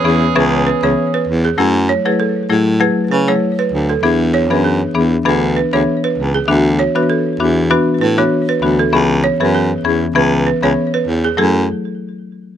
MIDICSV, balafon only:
0, 0, Header, 1, 2, 480
1, 0, Start_track
1, 0, Key_signature, 3, "minor"
1, 0, Tempo, 612245
1, 1239, Time_signature, 4, 2, 24, 8
1, 9856, End_track
2, 0, Start_track
2, 0, Title_t, "Balafon"
2, 0, Program_c, 0, 12
2, 282, Note_on_c, 0, 71, 77
2, 377, Note_off_c, 0, 71, 0
2, 522, Note_on_c, 0, 71, 71
2, 653, Note_off_c, 0, 71, 0
2, 654, Note_on_c, 0, 73, 78
2, 732, Note_off_c, 0, 73, 0
2, 894, Note_on_c, 0, 71, 76
2, 972, Note_off_c, 0, 71, 0
2, 1134, Note_on_c, 0, 68, 78
2, 1212, Note_off_c, 0, 68, 0
2, 1482, Note_on_c, 0, 73, 83
2, 1577, Note_off_c, 0, 73, 0
2, 1614, Note_on_c, 0, 71, 68
2, 1691, Note_off_c, 0, 71, 0
2, 1722, Note_on_c, 0, 69, 74
2, 1896, Note_off_c, 0, 69, 0
2, 2202, Note_on_c, 0, 71, 78
2, 2297, Note_off_c, 0, 71, 0
2, 2441, Note_on_c, 0, 71, 69
2, 2537, Note_off_c, 0, 71, 0
2, 2574, Note_on_c, 0, 73, 77
2, 2652, Note_off_c, 0, 73, 0
2, 2813, Note_on_c, 0, 71, 77
2, 2891, Note_off_c, 0, 71, 0
2, 3053, Note_on_c, 0, 69, 69
2, 3131, Note_off_c, 0, 69, 0
2, 3401, Note_on_c, 0, 73, 84
2, 3497, Note_off_c, 0, 73, 0
2, 3533, Note_on_c, 0, 71, 70
2, 3611, Note_off_c, 0, 71, 0
2, 3640, Note_on_c, 0, 68, 73
2, 3815, Note_off_c, 0, 68, 0
2, 4122, Note_on_c, 0, 71, 77
2, 4217, Note_off_c, 0, 71, 0
2, 4362, Note_on_c, 0, 71, 68
2, 4457, Note_off_c, 0, 71, 0
2, 4494, Note_on_c, 0, 73, 76
2, 4572, Note_off_c, 0, 73, 0
2, 4735, Note_on_c, 0, 71, 80
2, 4813, Note_off_c, 0, 71, 0
2, 4974, Note_on_c, 0, 68, 74
2, 5052, Note_off_c, 0, 68, 0
2, 5324, Note_on_c, 0, 73, 84
2, 5418, Note_off_c, 0, 73, 0
2, 5455, Note_on_c, 0, 71, 69
2, 5532, Note_off_c, 0, 71, 0
2, 5563, Note_on_c, 0, 69, 73
2, 5737, Note_off_c, 0, 69, 0
2, 6043, Note_on_c, 0, 71, 79
2, 6138, Note_off_c, 0, 71, 0
2, 6282, Note_on_c, 0, 71, 71
2, 6377, Note_off_c, 0, 71, 0
2, 6415, Note_on_c, 0, 73, 78
2, 6492, Note_off_c, 0, 73, 0
2, 6655, Note_on_c, 0, 71, 73
2, 6732, Note_off_c, 0, 71, 0
2, 6894, Note_on_c, 0, 69, 76
2, 6972, Note_off_c, 0, 69, 0
2, 7242, Note_on_c, 0, 73, 84
2, 7337, Note_off_c, 0, 73, 0
2, 7376, Note_on_c, 0, 71, 67
2, 7453, Note_off_c, 0, 71, 0
2, 7482, Note_on_c, 0, 68, 76
2, 7656, Note_off_c, 0, 68, 0
2, 7964, Note_on_c, 0, 71, 78
2, 8058, Note_off_c, 0, 71, 0
2, 8205, Note_on_c, 0, 71, 70
2, 8299, Note_off_c, 0, 71, 0
2, 8337, Note_on_c, 0, 73, 80
2, 8413, Note_off_c, 0, 73, 0
2, 8576, Note_on_c, 0, 71, 79
2, 8653, Note_off_c, 0, 71, 0
2, 8816, Note_on_c, 0, 68, 75
2, 8893, Note_off_c, 0, 68, 0
2, 8924, Note_on_c, 0, 69, 80
2, 9145, Note_off_c, 0, 69, 0
2, 9856, End_track
0, 0, End_of_file